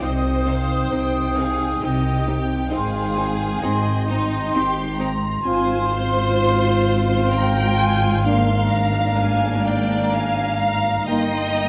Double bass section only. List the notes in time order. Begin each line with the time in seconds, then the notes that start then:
0.00 C2
0.92 C2
1.82 C2
2.73 G#1
3.63 G#1
4.55 G#1
5.45 G#1
11.06 G1